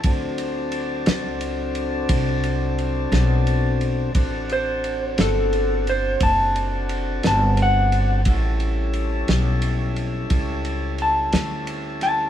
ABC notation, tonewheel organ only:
X:1
M:12/8
L:1/8
Q:3/8=59
K:D
V:1 name="Tonewheel organ"
[F,=CDA]12 | [=CDFA]12 | [G,CEA]12 |]